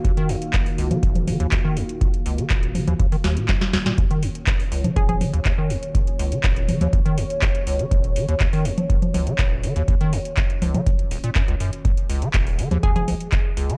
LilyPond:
<<
  \new Staff \with { instrumentName = "Synth pluck" } { \time 4/4 \key ees \minor \tempo 4 = 122 r1 | r1 | r2 aes'16 aes'16 r4. | r1 |
r1 | r1 | r2 aes'16 aes'16 r4. | }
  \new Staff \with { instrumentName = "Analog synth pad" } { \time 4/4 \key ees \minor << { f''1~ | f''1 | des''1~ | des''1~ |
des''1~ | des''1 | aes'1 | } \\ { <ees bes ges'>1~ | <ees bes ges'>1~ | <ees bes ges'>1~ | <ees bes ges'>1~ |
<ees bes ges'>1~ | <ees bes ges'>1~ | <ees bes ges'>1 | } >> }
  \new Staff \with { instrumentName = "Acid bass" } { \clef bass \time 4/4 \key ees \minor ees,16 ees16 ees,16 r16 ees,,16 r16 des,16 ees16 ees,,8 ees16 ees,16 ees,16 ees16 ees,16 r16 | ees,,16 r16 des,16 ees16 ees,,8 ees16 ees,16 ees,16 ees16 ees,16 bes,16 ges,16 r16 ees,16 bes,16 | ees,16 ees16 ees,16 r16 ees,,16 r16 des,16 ees16 ees,,8 ees16 ees,16 ees,16 ees16 ees,16 r16 | ees,,16 r16 des,16 ees16 ees,,8 ees16 ees,16 ees,16 ees16 ees,16 r16 ees,,16 r16 des,16 ees16 |
ees,,8 ees16 ees,16 ees,16 ees16 ees,16 r16 ees,,16 r16 des,16 ees16 ees,,8 ees16 ees,16 | ees,16 ees16 ees,16 r16 ees,,16 r16 des,16 ees16 ees,,16 r16 ees,,16 bes,16 ges,16 des,16 ges,16 r16 | ees,,16 r16 des,16 ees16 ees,,8 ees16 ees,16 ees,16 ees,,16 ees,16 r16 ees,,16 r16 des,16 ees16 | }
  \new DrumStaff \with { instrumentName = "Drums" } \drummode { \time 4/4 <hh bd>16 hh16 hho16 hh16 <hc hh bd>16 hho16 hho16 <cgl hh>16 <hh bd>16 <cgl hh>16 <cgl hho>16 hh16 <hc hh bd>8 hho16 hh16 | <hh bd>16 hh16 hho16 hh16 <hc hh bd>16 hh16 <cgl hho>16 <cgl hh>16 <hh bd>16 hho16 <hho sn>16 hh16 <hc hh bd sn>16 <hh sn>16 <hho sn>16 <hh sn>16 | <hh bd>16 hh16 hho16 hh16 <hc hh bd>16 hho16 hho16 <cgl hh>16 <hh bd>16 <cgl hh>16 <cgl hho>16 hh16 <hc hh bd>8 hho16 hh16 | <hh bd>16 hh16 hho16 hh16 <hc hh bd>16 hh16 <cgl hho>16 <cgl hh>16 <hh bd>16 hh16 hho16 hh16 <hc hh bd>16 hh16 hho16 hh16 |
<hh bd>16 hh16 hho16 hh16 <hc hh bd>16 hho16 hho16 <cgl hh>16 <hh bd>16 <cgl hh>16 <cgl hho>16 hh16 <hc hh bd>8 hho16 hh16 | <hh bd>16 hh16 hho16 hh16 <hc hh bd>16 hh16 <cgl hho>16 <cgl hh>16 <hh bd>16 hh16 hho16 hh16 <hc hh bd>16 hh16 hho16 hh16 | <hh bd>16 hh16 hho16 hh16 <hc hh bd>16 hho16 hho16 <cgl hh>16 <hh bd>16 <cgl hh>16 <cgl hho>16 hh16 <hc hh bd>8 hho16 hh16 | }
>>